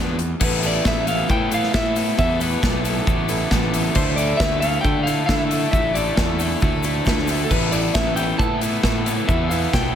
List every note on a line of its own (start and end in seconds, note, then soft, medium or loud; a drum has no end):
0.00 0.33 E2 medium
0.00 0.19 F3 medium
0.00 0.18 B3 medium
0.00 0.19 B3 medium
0.00 0.17 D4 medium
0.00 0.18 D4 medium
0.00 0.18 F4 medium
0.00 0.17 B4 medium
0.19 muted overdriven electric guitar stroke soft
0.19 closed hi-hat medium
0.39 0.78 A1 loud
0.39 0.61 A2 medium
0.39 0.62 E3 medium
0.39 0.63 A3 loud
0.39 0.63 B3 loud
0.39 0.63 E4 loud
0.39 0.64 A4 loud
0.39 3.92 B4 medium
0.39 9.95 A5 medium
0.39 2.16 E6 medium
0.39 kick loud
0.39 crash loud
0.39 shaker medium
0.44 0.66 B4 loud
0.62 0.84 A2 medium
0.62 0.84 E3 loud
0.62 0.85 A3 medium
0.62 0.85 B3 medium
0.62 0.86 E4 loud
0.62 0.86 A4 medium
0.62 open hi-hat medium
0.62 shaker loud
0.67 0.86 D5 medium
0.74 shaker soft
0.84 1.22 A1 medium
0.84 1.06 A2 medium
0.84 1.07 E3 medium
0.84 1.07 A3 medium
0.84 1.08 B3 medium
0.84 1.08 E4 medium
0.84 1.09 A4 medium
0.84 1.07 E5 loud
0.84 kick loud
0.84 snare loud
0.84 shaker medium
1.06 1.28 A2 medium
1.06 1.29 E3 medium
1.06 1.30 A3 medium
1.06 1.29 B3 loud
1.06 1.30 E4 loud
1.06 1.31 A4 loud
1.06 1.30 F5 medium
1.06 open hi-hat medium
1.06 shaker medium
1.19 shaker soft
1.29 1.49 A2 medium
1.29 1.66 A2 medium
1.29 1.51 E3 medium
1.29 1.51 A3 medium
1.29 1.51 B3 medium
1.29 1.52 E4 medium
1.29 1.53 A4 loud
1.29 1.53 G5 loud
1.29 kick loud
1.29 shaker medium
1.51 1.73 A2 medium
1.51 1.74 E3 medium
1.51 1.75 A3 medium
1.51 1.74 B3 loud
1.51 1.75 E4 medium
1.51 1.75 A4 loud
1.51 1.74 F5 loud
1.51 open hi-hat medium
1.51 shaker loud
1.63 snare soft
1.73 2.11 A2 medium
1.73 1.94 A2 medium
1.73 1.95 E3 loud
1.73 1.96 A3 medium
1.73 1.95 B3 loud
1.73 1.96 E4 loud
1.73 1.97 A4 loud
1.73 2.16 E5 loud
1.73 kick loud
1.73 snare loud
1.73 shaker medium
1.95 2.16 A2 medium
1.95 2.17 E3 medium
1.95 2.18 A3 medium
1.95 2.17 B3 medium
1.95 2.18 E4 medium
1.95 2.19 A4 medium
1.95 open hi-hat medium
1.95 shaker medium
2.07 shaker soft
2.17 2.55 E2 loud
2.17 2.39 A2 medium
2.17 2.40 E3 loud
2.17 2.40 A3 medium
2.17 2.40 B3 loud
2.17 2.41 E4 loud
2.17 2.42 A4 loud
2.17 2.39 E5 loud
2.17 3.94 D6 medium
2.17 kick loud
2.17 shaker medium
2.40 2.60 A2 medium
2.40 2.61 E3 medium
2.40 2.62 A3 loud
2.40 2.61 B3 loud
2.40 2.62 E4 loud
2.40 2.63 A4 medium
2.40 3.03 B4 medium
2.40 open hi-hat medium
2.40 shaker medium
2.52 shaker soft
2.61 3.00 B1 medium
2.61 2.82 A2 medium
2.61 2.83 E3 medium
2.61 2.84 A3 medium
2.61 2.84 B3 medium
2.61 2.84 E4 medium
2.61 2.85 A4 medium
2.61 kick loud
2.61 snare loud
2.61 shaker medium
2.84 3.06 A2 medium
2.84 3.07 E3 loud
2.84 3.07 A3 medium
2.84 3.07 B3 medium
2.84 3.08 E4 medium
2.84 3.08 A4 loud
2.84 open hi-hat medium
2.84 shaker medium
2.97 shaker soft
3.07 3.44 A1 loud
3.07 3.27 A2 medium
3.07 3.28 E3 medium
3.07 3.29 A3 medium
3.07 3.28 B3 medium
3.07 3.29 E4 loud
3.07 3.30 A4 medium
3.07 kick loud
3.07 shaker medium
3.28 3.49 A2 medium
3.28 3.50 E3 medium
3.28 3.51 A3 medium
3.28 3.51 B3 medium
3.28 3.51 E4 medium
3.28 3.52 A4 loud
3.28 open hi-hat medium
3.28 shaker medium
3.50 3.88 A1 loud
3.50 3.71 A2 loud
3.50 3.72 E3 loud
3.50 3.73 A3 loud
3.50 3.73 B3 loud
3.50 3.74 E4 loud
3.50 3.74 A4 loud
3.50 kick loud
3.50 snare loud
3.50 shaker medium
3.72 3.94 A2 medium
3.72 3.94 E3 loud
3.72 3.95 A3 loud
3.72 3.95 B3 loud
3.72 3.96 E4 medium
3.72 3.96 A4 medium
3.72 open hi-hat medium
3.72 shaker loud
3.85 shaker soft
3.95 4.32 D2 loud
3.95 4.17 D3 medium
3.95 4.17 A3 medium
3.95 4.18 D4 loud
3.95 4.18 E4 loud
3.95 4.19 A4 loud
3.95 4.16 C5 loud
3.95 7.48 D5 medium
3.95 7.48 E6 medium
3.95 kick loud
3.95 crash medium
3.95 shaker medium
4.16 4.40 D3 medium
4.16 4.40 A3 loud
4.16 4.41 D4 medium
4.16 4.41 E4 loud
4.16 4.41 A4 loud
4.16 4.40 D5 medium
4.16 open hi-hat medium
4.16 shaker medium
4.30 shaker soft
4.37 4.77 D2 medium
4.37 4.62 D3 medium
4.37 4.62 A3 medium
4.37 4.62 A4 loud
4.37 4.60 E5 medium
4.37 kick loud
4.37 snare loud
4.37 shaker medium
4.42 4.63 D4 loud
4.42 4.63 E4 medium
4.60 4.83 D3 loud
4.60 4.84 A3 medium
4.60 4.84 D4 medium
4.60 4.85 E4 loud
4.60 4.85 A4 loud
4.60 4.81 F5 loud
4.60 open hi-hat medium
4.60 shaker medium
4.73 shaker soft
4.81 5.05 D3 medium
4.81 5.21 D3 medium
4.81 5.07 A3 medium
4.81 5.06 D4 medium
4.81 5.03 G5 loud
4.81 kick loud
4.81 shaker medium
4.85 5.07 E4 medium
4.85 5.07 A4 medium
5.03 5.28 D3 medium
5.03 5.30 A3 medium
5.03 5.26 F5 medium
5.03 open hi-hat medium
5.07 5.29 D4 medium
5.07 5.31 E4 loud
5.07 5.29 A4 medium
5.07 shaker loud
5.26 5.66 D3 medium
5.26 5.51 D3 loud
5.26 5.51 A4 loud
5.26 5.37 F5 loud
5.26 kick loud
5.26 snare loud
5.26 shaker medium
5.30 5.53 A3 loud
5.30 5.52 D4 loud
5.30 5.53 E4 loud
5.37 5.70 E5 loud
5.51 5.72 D3 medium
5.51 5.74 A3 medium
5.51 5.74 D4 medium
5.51 5.75 E4 medium
5.51 5.74 A4 medium
5.51 open hi-hat medium
5.51 shaker loud
5.63 shaker soft
5.71 6.10 A1 loud
5.71 5.94 D3 medium
5.71 5.96 A3 medium
5.71 5.96 D4 loud
5.71 5.97 E4 loud
5.71 5.95 A4 loud
5.71 5.95 E5 loud
5.71 kick loud
5.71 shaker medium
5.94 6.17 D3 medium
5.94 6.18 A3 medium
5.94 6.18 D4 loud
5.94 6.19 E4 medium
5.94 6.18 A4 medium
5.94 6.58 D5 medium
5.94 open hi-hat medium
5.94 shaker loud
6.07 shaker soft
6.17 6.54 E2 medium
6.17 6.39 D3 medium
6.17 6.40 A3 medium
6.17 6.40 D4 medium
6.17 6.41 E4 medium
6.17 6.40 A4 medium
6.17 kick loud
6.17 snare loud
6.17 shaker medium
6.39 6.61 D3 medium
6.39 6.62 A3 medium
6.39 6.62 D4 medium
6.39 6.63 E4 loud
6.39 6.62 A4 loud
6.39 open hi-hat medium
6.39 shaker loud
6.50 shaker soft
6.60 6.99 D2 loud
6.60 6.83 D3 medium
6.60 6.84 A3 medium
6.60 6.84 D4 medium
6.60 6.86 E4 medium
6.60 6.85 A4 medium
6.60 kick loud
6.60 shaker medium
6.83 7.05 D3 medium
6.83 7.06 A3 medium
6.83 7.06 D4 medium
6.83 7.07 E4 medium
6.83 7.06 A4 loud
6.83 open hi-hat medium
6.83 shaker medium
7.05 7.43 D2 medium
7.05 7.28 D3 medium
7.05 7.29 A3 loud
7.05 7.29 D4 loud
7.05 7.31 E4 loud
7.05 7.29 A4 loud
7.05 kick loud
7.05 snare loud
7.05 shaker medium
7.18 snare soft
7.28 7.50 D3 medium
7.28 7.52 A3 medium
7.28 7.51 D4 medium
7.28 7.52 E4 medium
7.28 7.51 A4 medium
7.28 open hi-hat medium
7.28 shaker loud
7.39 shaker soft
7.45 7.51 A4 medium
7.50 7.87 A1 medium
7.50 7.73 A2 medium
7.50 7.74 E3 medium
7.50 7.74 A3 loud
7.50 7.75 B3 loud
7.50 7.75 E4 loud
7.50 7.74 A4 loud
7.50 7.71 B4 medium
7.50 9.95 B4 medium
7.50 9.95 E6 medium
7.50 kick loud
7.50 crash medium
7.50 shaker medium
7.72 7.95 A2 medium
7.72 7.96 E3 medium
7.72 7.96 A3 loud
7.72 7.96 B3 medium
7.72 7.97 E4 medium
7.72 7.96 A4 medium
7.72 7.95 D5 medium
7.72 open hi-hat medium
7.72 shaker loud
7.84 shaker soft
7.94 8.32 A1 medium
7.94 8.17 A2 medium
7.94 8.18 E3 loud
7.94 8.18 A3 medium
7.94 8.18 B3 medium
7.94 8.19 E4 medium
7.94 8.18 A4 medium
7.94 8.16 E5 medium
7.94 kick loud
7.94 snare loud
7.94 shaker medium
8.16 8.39 A2 medium
8.16 8.40 E3 medium
8.16 8.40 A3 loud
8.16 8.40 B3 loud
8.16 8.42 E4 loud
8.16 8.40 A4 medium
8.16 8.37 G5 medium
8.16 open hi-hat medium
8.16 shaker loud
8.29 shaker soft
8.38 8.76 A2 loud
8.38 8.60 A2 medium
8.38 8.62 E3 medium
8.38 8.62 A3 medium
8.38 8.62 B3 medium
8.38 8.63 E4 medium
8.38 8.62 A4 loud
8.38 8.60 A5 medium
8.38 kick loud
8.38 shaker medium
8.61 8.82 A2 medium
8.61 8.84 E3 medium
8.61 8.84 A3 medium
8.61 8.83 B3 medium
8.61 8.85 E4 medium
8.61 8.84 A4 loud
8.61 open hi-hat medium
8.61 shaker loud
8.83 9.20 A2 loud
8.83 9.05 A2 loud
8.83 9.07 E3 loud
8.83 9.07 A3 loud
8.83 9.07 B3 loud
8.83 9.08 E4 loud
8.83 9.07 A4 loud
8.83 kick loud
8.83 snare loud
8.83 shaker medium
9.06 9.27 A2 medium
9.06 9.29 E3 medium
9.06 9.29 A3 medium
9.06 9.29 B3 medium
9.06 9.30 E4 medium
9.06 9.29 A4 medium
9.06 open hi-hat medium
9.06 shaker loud
9.18 shaker soft
9.27 9.65 E2 loud
9.27 9.50 A2 loud
9.27 9.51 E3 medium
9.27 9.52 A3 loud
9.27 9.51 B3 loud
9.27 9.53 E4 loud
9.27 9.51 A4 loud
9.27 9.49 E5 medium
9.27 kick loud
9.27 shaker medium
9.49 9.72 A2 medium
9.49 9.74 E3 medium
9.49 9.74 A3 loud
9.49 9.74 B3 loud
9.49 9.75 A4 medium
9.49 9.73 F5 medium
9.49 open hi-hat medium
9.49 shaker loud
9.53 9.75 E4 loud
9.63 shaker soft
9.73 9.95 B1 medium
9.73 9.95 A2 medium
9.73 9.95 E3 medium
9.73 9.95 A3 medium
9.73 9.95 B3 loud
9.73 9.95 E4 loud
9.73 9.95 A4 medium
9.73 9.95 G5 loud
9.73 kick loud
9.73 snare loud
9.73 shaker medium